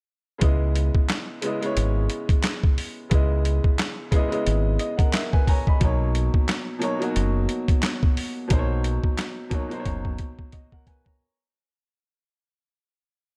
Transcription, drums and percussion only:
0.41 kick, closed hi-hat
0.76 closed hi-hat
0.95 kick
1.09 snare, clap, closed hi-hat
1.42 closed hi-hat
1.63 closed hi-hat
1.77 closed hi-hat
2.10 closed hi-hat
2.29 kick, closed hi-hat
2.43 snare, clap, closed hi-hat
2.64 kick
2.78 open hi-hat
3.11 kick, closed hi-hat
3.45 closed hi-hat
3.64 kick
3.78 snare, clap, closed hi-hat
4.12 kick, closed hi-hat
4.32 closed hi-hat
4.47 closed hi-hat
4.79 closed hi-hat
4.99 kick, closed hi-hat
5.13 snare, clap, closed hi-hat
5.33 kick
5.47 kick, open hi-hat
5.67 kick
5.81 kick, closed hi-hat
6.15 closed hi-hat
6.34 kick
6.48 snare, clap, closed hi-hat
6.82 closed hi-hat
7.02 closed hi-hat
7.16 closed hi-hat
7.49 closed hi-hat
7.68 kick, closed hi-hat
7.83 snare, clap, closed hi-hat
8.03 kick
8.17 open hi-hat
8.50 kick, closed hi-hat
8.84 closed hi-hat
9.04 kick
9.18 snare, clap, closed hi-hat
9.51 kick, closed hi-hat
9.71 closed hi-hat
9.86 kick, closed hi-hat
10.05 kick
10.18 kick, closed hi-hat
10.39 kick
10.52 kick, closed hi-hat
10.72 kick
10.87 kick, closed hi-hat
11.06 kick

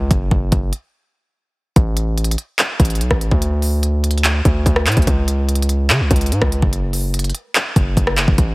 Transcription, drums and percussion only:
0.11 kick, closed hi-hat
0.31 kick
0.52 kick, closed hi-hat
0.73 closed hi-hat
1.76 kick, closed hi-hat
1.97 closed hi-hat
2.18 closed hi-hat
2.24 closed hi-hat
2.31 closed hi-hat
2.38 closed hi-hat
2.59 clap, closed hi-hat
2.80 kick, closed hi-hat
2.85 closed hi-hat
2.90 closed hi-hat
2.95 closed hi-hat
3.01 closed hi-hat
3.11 kick, cross-stick
3.21 closed hi-hat
3.31 kick
3.42 closed hi-hat
3.62 open hi-hat
3.83 closed hi-hat
4.04 closed hi-hat
4.11 closed hi-hat
4.18 closed hi-hat
4.24 clap, closed hi-hat
4.45 kick, closed hi-hat
4.66 kick, closed hi-hat
4.76 cross-stick
4.87 clap, closed hi-hat
4.92 closed hi-hat
4.97 kick, closed hi-hat
5.02 closed hi-hat
5.07 kick, closed hi-hat
5.28 closed hi-hat
5.49 closed hi-hat
5.55 closed hi-hat
5.62 closed hi-hat
5.69 closed hi-hat
5.90 clap, closed hi-hat
6.11 kick, closed hi-hat
6.16 closed hi-hat
6.21 closed hi-hat
6.26 closed hi-hat
6.32 closed hi-hat
6.42 kick, cross-stick
6.52 closed hi-hat
6.62 kick
6.73 closed hi-hat
6.93 open hi-hat
7.14 closed hi-hat
7.19 closed hi-hat
7.24 closed hi-hat
7.30 closed hi-hat
7.35 closed hi-hat
7.55 clap, closed hi-hat
7.76 kick, closed hi-hat
7.97 kick, closed hi-hat
8.07 cross-stick
8.18 clap, closed hi-hat
8.28 kick
8.38 kick, closed hi-hat

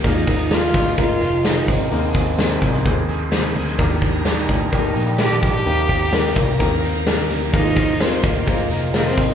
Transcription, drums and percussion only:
0.04 kick, hi-hat pedal, open hi-hat
0.27 kick, hi-hat pedal, open hi-hat
0.40 open hi-hat
0.51 snare, hi-hat pedal, open hi-hat
0.63 hi-hat pedal
0.74 kick, hi-hat pedal, open hi-hat
0.86 snare
0.97 kick, hi-hat pedal, open hi-hat
1.21 hi-hat pedal, open hi-hat
1.45 snare, hi-hat pedal, open hi-hat
1.68 kick, hi-hat pedal, open hi-hat
1.91 hi-hat pedal, open hi-hat
2.15 kick, hi-hat pedal, open hi-hat
2.38 snare, hi-hat pedal, open hi-hat
2.62 kick, hi-hat pedal, open hi-hat
2.74 snare
2.85 kick, hi-hat pedal, open hi-hat
3.09 hi-hat pedal, open hi-hat
3.32 snare, hi-hat pedal, open hi-hat
3.44 open hi-hat
3.55 hi-hat pedal, open hi-hat
3.67 hi-hat pedal
3.79 kick, hi-hat pedal, open hi-hat
4.02 kick, hi-hat pedal, open hi-hat
4.25 snare, hi-hat pedal, open hi-hat
4.49 kick, hi-hat pedal, open hi-hat
4.72 kick, hi-hat pedal, open hi-hat
4.96 hi-hat pedal, open hi-hat
5.18 snare, hi-hat pedal, open hi-hat
5.31 open hi-hat
5.42 kick, hi-hat pedal, open hi-hat
5.54 hi-hat pedal
5.65 hi-hat pedal, open hi-hat
5.89 kick, hi-hat pedal, open hi-hat
6.01 open hi-hat
6.13 snare, hi-hat pedal, open hi-hat
6.24 hi-hat pedal
6.36 kick, hi-hat pedal, open hi-hat
6.59 kick, hi-hat pedal, open hi-hat
6.84 hi-hat pedal, open hi-hat
7.07 snare, hi-hat pedal, open hi-hat
7.30 hi-hat pedal, open hi-hat
7.54 kick, hi-hat pedal, open hi-hat
7.77 kick, hi-hat pedal, open hi-hat
7.89 open hi-hat
8.00 snare, hi-hat pedal, open hi-hat
8.12 hi-hat pedal
8.24 kick, hi-hat pedal, open hi-hat
8.47 kick, hi-hat pedal, open hi-hat
8.71 hi-hat pedal, open hi-hat
8.94 snare, hi-hat pedal, open hi-hat
9.06 open hi-hat
9.18 kick, hi-hat pedal, open hi-hat
9.29 hi-hat pedal

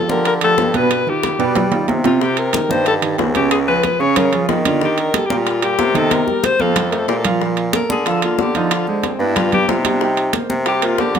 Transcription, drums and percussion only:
0.09 high conga
0.25 high bongo, high conga, high timbale
0.41 high conga, high timbale
0.58 high bongo, low bongo, high conga, low timbale
0.74 high conga, high timbale
0.91 high bongo, high conga, high timbale
1.07 high conga
1.23 high bongo, high conga, high timbale
1.40 high conga, high timbale
1.55 low bongo, high conga, low conga, low timbale
1.72 high conga, low timbale
1.88 high conga, low timbale
2.04 low bongo, high conga, low timbale
2.21 high bongo, high conga
2.37 high conga, high timbale
2.53 high bongo, high conga, high timbale
2.71 high conga
2.86 high bongo, high conga, high timbale
3.02 high conga, high timbale
3.18 high bongo, low bongo, high conga, low timbale
3.35 high conga, high timbale
3.51 high bongo, high conga, high timbale
3.68 high bongo, high conga
3.83 high bongo, high conga, high timbale
4.00 high bongo, high conga
4.16 high bongo, high conga, low conga, high timbale
4.32 high bongo, high conga, high timbale
4.49 high bongo, low bongo, high conga, low timbale
4.65 high conga, high timbale
4.81 high bongo, high conga
4.98 high conga, high timbale
5.14 high bongo, high conga, high timbale
5.30 high conga
5.47 high bongo, high conga, high timbale
5.62 high conga, high timbale
5.79 high bongo, low bongo, high conga, low timbale
5.95 high conga, high timbale
6.11 high bongo, high conga, high timbale
6.27 high bongo, high conga
6.43 high bongo, high conga, high timbale
6.60 high bongo, high conga
6.76 high bongo, low conga, high timbale
6.92 high bongo, high timbale
7.08 high bongo, low bongo, low timbale
7.25 low conga, high timbale
7.41 high bongo, high conga
7.57 high conga, high timbale
7.73 high bongo, high conga, high timbale
7.90 high conga
8.06 high bongo, high conga, high timbale
8.22 high conga, high timbale
8.38 high bongo, low bongo, high conga
8.55 high conga, high timbale
8.71 high bongo, high conga, high timbale
8.87 high bongo, high conga
9.03 high bongo, high conga, high timbale
9.20 high bongo, high conga
9.36 high bongo, high conga, low conga, high timbale
9.52 high bongo, high conga, low conga, high timbale
9.69 high bongo, low bongo, high conga, low timbale
9.85 high conga, high timbale
10.01 high bongo, high conga
10.17 high conga, high timbale
10.33 high bongo, high conga, high timbale
10.50 high conga
10.66 high bongo, high conga, high timbale
10.82 high conga, high timbale
10.98 high bongo, low bongo, high conga, low timbale
11.15 high conga, high timbale

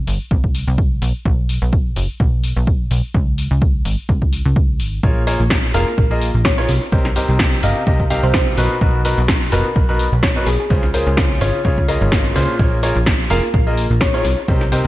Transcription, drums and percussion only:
0.07 open hi-hat
0.31 kick
0.44 kick
0.55 open hi-hat
0.78 kick
1.02 open hi-hat
1.25 kick
1.49 open hi-hat
1.73 kick
1.96 open hi-hat
2.20 kick
2.44 open hi-hat
2.67 kick
2.91 open hi-hat
3.15 kick
3.38 open hi-hat
3.62 kick
3.85 open hi-hat
4.09 kick
4.22 kick
4.33 open hi-hat
4.56 kick
4.80 open hi-hat
5.03 kick
5.27 open hi-hat
5.50 kick, snare
5.74 open hi-hat
5.98 kick
6.21 open hi-hat
6.45 kick, snare
6.69 open hi-hat
6.92 kick
7.05 snare
7.16 open hi-hat
7.39 kick, snare
7.63 open hi-hat
7.87 kick
8.00 kick
8.10 open hi-hat
8.34 kick, snare
8.58 open hi-hat
8.81 kick
9.05 open hi-hat
9.28 kick, snare
9.52 open hi-hat
9.76 kick
9.99 open hi-hat
10.23 kick, snare
10.47 open hi-hat
10.70 kick
10.83 snare
10.94 open hi-hat
11.17 kick, snare
11.41 open hi-hat
11.65 kick
11.78 kick
11.88 open hi-hat
12.12 kick, snare
12.36 open hi-hat
12.59 kick
12.83 open hi-hat
13.06 kick, snare
13.30 open hi-hat
13.54 kick
13.77 open hi-hat
14.01 kick, snare
14.25 open hi-hat
14.48 kick
14.61 snare
14.72 open hi-hat

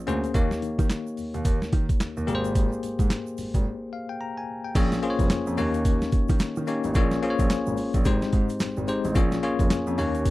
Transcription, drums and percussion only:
0.07 closed hi-hat, shaker
0.24 closed hi-hat, shaker
0.34 kick, closed hi-hat, shaker
0.51 snare, shaker
0.62 closed hi-hat, shaker
0.79 kick, closed hi-hat, shaker
0.90 snare, clap, closed hi-hat, shaker
1.07 shaker
1.17 open hi-hat, shaker
1.34 closed hi-hat, shaker
1.45 kick, closed hi-hat, shaker
1.62 snare, shaker
1.72 kick, closed hi-hat
1.89 kick, closed hi-hat, shaker
2.00 snare, clap, closed hi-hat, shaker
2.17 shaker
2.28 closed hi-hat, shaker
2.44 closed hi-hat, shaker
2.55 kick, closed hi-hat, tambourine, shaker
2.72 shaker
2.83 closed hi-hat, tambourine, shaker
2.99 kick, closed hi-hat, shaker
3.10 snare, clap, closed hi-hat, tambourine, shaker
3.27 shaker
3.38 open hi-hat, tambourine, shaker
3.54 kick, closed hi-hat, shaker
4.75 kick, closed hi-hat, crash, tambourine, shaker
4.92 snare, shaker
5.03 closed hi-hat, tambourine
5.19 kick, closed hi-hat, shaker
5.30 snare, clap, closed hi-hat, tambourine, shaker
5.47 shaker
5.57 open hi-hat, tambourine, shaker
5.74 closed hi-hat, shaker
5.85 kick, closed hi-hat, tambourine, shaker
6.02 snare, shaker
6.12 kick, closed hi-hat, shaker
6.28 kick, closed hi-hat, shaker
6.39 snare, clap, closed hi-hat, tambourine, shaker
6.56 shaker
6.67 closed hi-hat, tambourine, shaker
6.84 closed hi-hat, shaker
6.94 kick, closed hi-hat, tambourine, shaker
7.11 snare, shaker
7.23 closed hi-hat, tambourine
7.39 kick, closed hi-hat, shaker
7.50 snare, clap, closed hi-hat, tambourine, shaker
7.66 shaker
7.77 open hi-hat, tambourine, shaker
7.94 kick, closed hi-hat, shaker
8.05 kick, closed hi-hat, tambourine, shaker
8.22 snare, shaker
8.33 kick, closed hi-hat, shaker
8.49 closed hi-hat, shaker
8.60 snare, clap, closed hi-hat, tambourine, shaker
8.77 shaker
8.88 closed hi-hat, tambourine, shaker
9.04 closed hi-hat, shaker
9.15 kick, closed hi-hat, tambourine, shaker
9.32 snare, shaker
9.43 closed hi-hat, tambourine
9.59 kick, closed hi-hat, shaker
9.70 snare, clap, closed hi-hat, tambourine, shaker
9.87 shaker
9.98 open hi-hat, tambourine, shaker
10.15 closed hi-hat, shaker
10.25 kick, closed hi-hat, tambourine, shaker

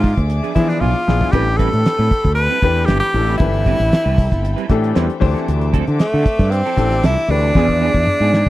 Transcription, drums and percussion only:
0.04 kick, open hi-hat
0.17 kick, closed hi-hat
0.30 closed hi-hat
0.44 closed hi-hat
0.56 kick, closed hi-hat
0.70 closed hi-hat
0.82 high tom
1.09 snare
1.21 floor tom
1.33 kick, closed hi-hat
1.48 closed hi-hat
1.59 kick, closed hi-hat
1.73 closed hi-hat
1.86 snare, closed hi-hat
2.00 snare
2.11 kick, closed hi-hat
2.25 kick, closed hi-hat
2.37 closed hi-hat
2.51 closed hi-hat
2.62 kick, closed hi-hat
2.76 closed hi-hat
2.88 snare, closed hi-hat
3.02 closed hi-hat
3.14 open hi-hat
3.29 snare
3.39 kick, closed hi-hat
3.54 closed hi-hat
3.66 kick, closed hi-hat
3.80 closed hi-hat
3.92 snare, closed hi-hat
4.07 closed hi-hat
4.18 kick, open hi-hat
4.32 kick, closed hi-hat
4.45 closed hi-hat
4.58 closed hi-hat
4.69 kick, snare, closed hi-hat
4.84 closed hi-hat
4.96 snare, closed hi-hat
5.10 closed hi-hat
5.22 kick, open hi-hat
5.37 snare, closed hi-hat
5.48 closed hi-hat
5.61 closed hi-hat
5.74 kick, closed hi-hat
5.87 closed hi-hat
6.00 snare, closed hi-hat
6.26 kick, closed hi-hat
6.39 kick, closed hi-hat
6.52 closed hi-hat
6.66 closed hi-hat
6.77 kick, closed hi-hat
6.91 snare, closed hi-hat
7.03 snare, closed hi-hat
7.17 closed hi-hat
7.29 open hi-hat
7.55 kick, snare
7.69 kick
7.94 kick
8.07 mid tom
8.34 snare

